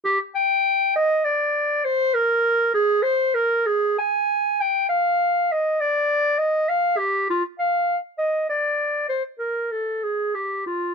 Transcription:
\new Staff \with { instrumentName = "Clarinet" } { \time 12/8 \key ees \major \tempo 4. = 66 g'8 g''4 ees''8 d''4 c''8 bes'4 aes'8 c''8 bes'8 | aes'8 aes''4 g''8 f''4 ees''8 d''4 ees''8 f''8 g'8 | f'8 f''8 r8 ees''8 d''4 c''8 bes'8 a'8 aes'8 g'8 f'8 | }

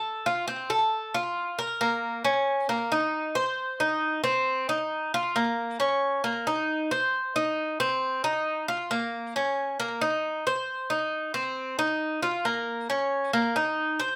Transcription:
\new Staff \with { instrumentName = "Cuban tres" } { \time 4/4 \key bes \minor \tempo 4 = 135 a'8 f'8 c'8 a'4 f'4 bes'8 | bes4 des'4 bes8 ees'4 c''8~ | c''8 ees'4 c'4 ees'4 f'8 | bes4 des'4 bes8 ees'4 c''8~ |
c''8 ees'4 c'4 ees'4 f'8 | bes4 des'4 bes8 ees'4 c''8~ | c''8 ees'4 c'4 ees'4 f'8 | bes4 des'4 bes8 ees'4 c''8 | }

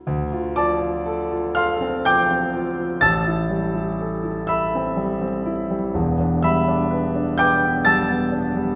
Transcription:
\new Staff \with { instrumentName = "Grand piano" } { \time 6/8 \key d \dorian \tempo 4. = 41 << { r8 <d'' a'' d'''>4 <f'' c''' f'''>8 <g'' d''' g'''>4 | <a'' e''' a'''>4. <e'' b'' e'''>4. | r8 <e'' b'' e'''>4 <g'' d''' g'''>8 <a'' e''' a'''>4 | } \\ { d,16 f'16 f16 f'16 a'16 f'16 a'16 c'16 f16 c'16 f'16 f16 | a,,16 e'16 g16 e'16 a'16 e'16 a'16 c'16 g16 c'16 e'16 g16 | <e,, e,>16 d'16 g16 d'16 b'16 d'16 b'16 b16 g16 b16 d'16 g16 | } >> }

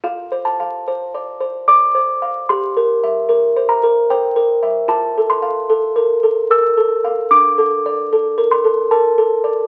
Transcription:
\new Staff \with { instrumentName = "Music box" } { \time 3/4 \key f \major \tempo 4 = 75 << { f''8 a''4. d'''4 | c'''4. bes''8 g''4 | a''8 c'''4. e'''4 | d'''4. c'''8 a''4 | } \\ { \tuplet 3/2 { f'8 c''8 f''8 c''8 d''8 c''8 d''8 c''8 f''8 } | \tuplet 3/2 { g'8 bes'8 e''8 bes'8 c''8 bes'8 c''8 bes'8 e''8 } | \tuplet 3/2 { f'8 a'8 f''8 a'8 bes'8 a'8 bes'8 a'8 f''8 } | \tuplet 3/2 { d'8 a'8 d''8 a'8 bes'8 a'8 bes'8 a'8 d''8 } | } >> }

